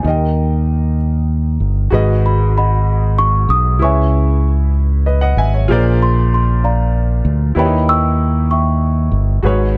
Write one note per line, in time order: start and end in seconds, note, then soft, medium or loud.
0.03 1.57 D#2 medium
0.03 0.95 D#3 medium
0.03 1.88 D#4 medium
0.03 1.89 G4 soft
0.03 1.90 A#4 medium
0.07 1.59 A#4 soft
0.07 1.91 D#5 medium
0.07 1.59 D#5 medium
0.07 1.60 G5 medium
1.60 1.90 G1 medium
1.90 3.45 G#1 loud
1.90 2.83 G#2 medium
1.90 3.76 F#4 medium
1.90 3.77 G#4 medium
1.90 3.77 B4 medium
1.90 3.78 D#5 medium
2.26 2.56 B5 medium
2.58 3.47 D#5 medium
2.58 3.47 F#5 medium
2.58 3.21 B5 medium
3.19 3.51 C#6 loud
3.49 3.80 B1 medium
3.49 3.82 D#6 loud
3.79 5.33 C#2 medium
3.79 4.71 C#3 medium
3.79 5.64 E4 medium
3.79 5.65 G#4 medium
3.79 5.04 B4 medium
3.79 5.04 C#5 medium
3.79 4.48 C#6 medium
3.84 5.05 E5 medium
3.84 4.72 E5 medium
3.84 4.72 G#5 medium
5.06 5.21 B4 medium
5.06 5.21 D#5 medium
5.21 5.37 D#5 medium
5.21 5.36 F#5 medium
5.37 5.66 G#1 medium
5.37 5.53 E5 medium
5.37 5.53 G#5 medium
5.54 5.83 C#5 soft
5.54 5.83 E5 medium
5.68 7.21 A#1 medium
5.68 6.59 A#2 medium
5.68 7.52 F4 medium
5.68 7.53 G#4 medium
5.68 7.53 A#4 medium
5.68 7.54 C5 medium
5.68 7.54 D5 medium
6.02 6.33 C6 medium
6.34 6.65 C6 medium
6.64 7.53 D5 medium
6.64 7.53 F5 medium
6.64 7.60 A#5 medium
7.25 7.54 D2 medium
7.55 9.08 D#2 loud
7.55 8.46 D#3 medium
7.55 9.39 E4 medium
7.55 9.40 G4 medium
7.55 9.40 B4 medium
7.55 9.41 C#5 medium
7.59 7.64 D5 medium
7.59 8.48 E5 medium
7.59 7.89 G5 medium
7.59 7.90 B5 medium
7.65 9.44 D#4 medium
7.89 8.51 G5 medium
7.89 8.50 C#6 medium
7.89 8.53 E6 loud
8.51 9.41 E5 medium
8.51 9.41 G5 medium
8.51 9.17 C#6 medium
9.12 9.41 G1 medium
9.42 9.77 G#1 medium
9.42 9.77 G#2 medium
9.42 9.77 F#4 medium
9.42 9.77 G#4 medium
9.42 9.77 B4 medium
9.42 9.77 C#5 medium